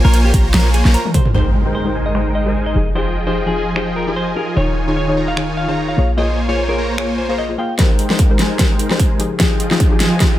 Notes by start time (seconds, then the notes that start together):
0.05 A#1 A#3 F4 A#4 C5 C#5 G#5
0.14 closed hi-hat
0.25 G4
0.34 A#1 A#3 F4 C5 C#5 A#5, kick, closed hi-hat
0.54 A#1 A#3 F4 A#4 C5 C#5 G#5, snare, closed hi-hat
0.74 G#4, closed hi-hat
0.85 A#1 A#3 F4 C5 C#5 A#5, snare
0.94 A#4, closed hi-hat
1.05 high tom
1.14 C5, kick, closed hi-hat, mid tom
1.25 mid tom
1.33 G#1 G#3 D#4 G4 A#4 C5 G5, impact
1.65 G#3 D#4 G4 A#4 C5 G5
1.75 C5
1.85 G#3 G4 A#4 C5
1.95 G#3 D#4 A#4 C5 G#5
2.06 D#5
2.14 G#3 D#4 G4 A#4 C5 G5, finger snap
2.35 D#5
2.45 G#3 D#4 G4 A#4 C5 G#5
2.66 D#5
2.74 F1 F3 D#4 G4 G#4
2.95 F3 D#4 F4 G4 G#4 C5 D#5 G5
3.26 F3 D#4 F4 G4 G#4 C5 D#5 G5
3.46 F3 D#4 G4 G#4
3.56 F3 F4 G#4 D#5 G#5
3.75 F3 D#4 F4 G4 G#4 C5 D#5 G5, finger snap
3.96 A#4
4.06 F3 D#4 F4 G4 G#4 D#5 G#5
4.16 C5
4.35 F3 D#4 G4 G#4 A#4
4.56 D#1 D#3 D#4 F4 G#4 C#5 G#5
4.87 D#3 D#4 F4 G#4 C#5 G#5
4.97 C#5
5.07 D#3 D#4 G#4 C#5
5.17 D#3 D#4 F4 C#5 A#5
5.28 F5
5.36 D#3 D#4 F4 G#4 C#5 G#5, finger snap
5.57 F5
5.67 D#3 D#4 F4 G#4 C#5 A#5
5.88 F5
5.97 A#1 A#3 F4 G#4 C#5
6.17 A#3 F4 G#4 C5 C#5 D#5 G#5
6.48 A#3 F4 G#4 C5 C#5 G#5
6.68 A#3 F4 G#4 A#4 C#5
6.78 A#3 F4 C5 C#5 A#5
6.97 A#3 F4 G#4 C5 C#5 G#5, finger snap
7.18 C5
7.28 A#3 F4 G#4 C5 C#5 A#5
7.38 D#5
7.49 A#3 F4 G#4 C5
7.58 A#3 F4 G#4 F5 G5
7.78 G#3 D#4 G4 A#4 C5 G5, kick, snare, closed hi-hat, riser
7.99 closed hi-hat
8.09 G#3 D#4 G4 A#4 C5 G5, snare
8.19 kick, closed hi-hat
8.29 G#3 G4 A#4 C5
8.39 G#3 D#4 A#4 C5 G#5, snare, closed hi-hat
8.58 G#3 D#4 G4 A#4 C5 G5, kick, snare, closed hi-hat
8.79 closed hi-hat
8.89 G#3 D#4 G4 A#4 C5 G#5, snare
9.00 kick, closed hi-hat
9.19 F3 D#4 G4 G#4, closed hi-hat
9.39 F3 D#4 F4 G4 G#4 D#5 G5, kick, snare, closed hi-hat
9.60 closed hi-hat
9.70 F3 D#4 F4 G4 G#4 D#5 G5, snare
9.80 kick, closed hi-hat
9.90 F3 D#4 G4 G#4
10.00 F3 F4 G#4 D#5 G#5, snare, closed hi-hat
10.19 F3 D#4 F4 G4 G#4 D#5 G5, kick, snare, closed hi-hat